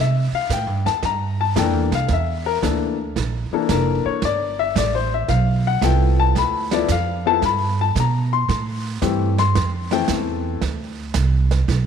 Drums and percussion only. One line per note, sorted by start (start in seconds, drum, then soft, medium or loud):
0.50 kick soft
0.50 snare medium
0.50 hi-hat pedal soft
0.86 snare soft
1.03 brush sweep soft
1.03 kick soft
1.03 snare soft
1.56 kick soft
1.56 snare medium
1.56 hi-hat pedal medium
1.92 snare soft
2.08 brush sweep soft
2.08 kick soft
2.08 snare soft
2.63 kick soft
2.63 snare medium
2.63 hi-hat pedal soft
3.16 brush sweep soft
3.16 kick soft
3.16 snare soft
3.69 kick soft
3.69 snare medium
3.69 hi-hat pedal medium
4.22 brush sweep medium
4.22 kick soft
4.22 snare soft
4.76 kick soft
4.76 snare medium
4.76 hi-hat pedal medium
5.28 brush sweep medium
5.28 kick soft
5.28 snare soft
5.82 kick soft
5.82 snare medium
5.82 hi-hat pedal medium
6.35 brush sweep soft
6.35 kick soft
6.35 snare soft
6.71 snare soft
6.88 kick soft
6.88 snare medium
6.88 hi-hat pedal medium
7.42 brush sweep soft
7.42 kick soft
7.42 snare soft
7.95 kick soft
7.95 snare medium
7.95 hi-hat pedal medium
8.49 brush sweep medium
8.49 kick soft
8.49 snare soft
9.02 kick soft
9.02 snare medium
9.02 hi-hat pedal soft
9.38 snare soft
9.55 brush sweep medium
9.55 kick soft
9.55 snare soft
9.91 snare soft
10.08 kick soft
10.08 snare medium
10.08 hi-hat pedal medium
10.61 brush sweep soft
10.61 kick soft
10.61 snare soft
11.14 kick soft
11.14 snare medium
11.14 hi-hat pedal medium
11.51 snare soft
11.68 brush sweep medium
11.68 kick soft
11.68 snare soft